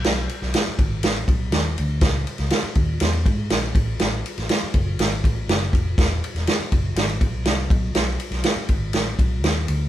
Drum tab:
RD |x-x-x-x-xxx-x-x-|x-xxx-x-xxx-x-x-|x-xxx-x-xxx-x-x-|x-xxx-x-xxx-x-x-|
SD |o--oo---o---o---|o--oo---o---o---|o--oo---o---o---|o--oo---o---o---|
BD |------o---o-----|o-----o---o---o-|------o---o---o-|o-----o---o---o-|

RD |x-xxx-x-x-x-x-x-|
SD |o--oo---o---o---|
BD |------o---o-----|